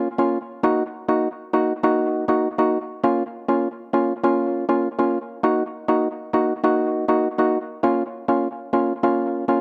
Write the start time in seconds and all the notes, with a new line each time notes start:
0.18 A#3 C#4 F4
0.63 A#3 D#4 F#4
1.08 A#3 D#4 F#4
1.53 A#3 D#4 F#4
1.83 A#3 D#4 F#4
2.28 A#3 D#4 F#4
2.58 A#3 D#4 F#4
3.04 A#3 C#4 F4
3.48 A#3 C#4 F4
3.93 A#3 C#4 F4
4.24 A#3 C#4 F4
4.69 A#3 C#4 F4
4.99 A#3 C#4 F4
5.43 A#3 D#4 F#4
5.88 A#3 D#4 F#4
6.33 A#3 D#4 F#4
6.64 A#3 D#4 F#4
7.08 A#3 D#4 F#4
7.38 A#3 D#4 F#4
7.83 A#3 C#4 F4
8.28 A#3 C#4 F4
8.73 A#3 C#4 F4
9.03 A#3 C#4 F4
9.48 A#3 C#4 F4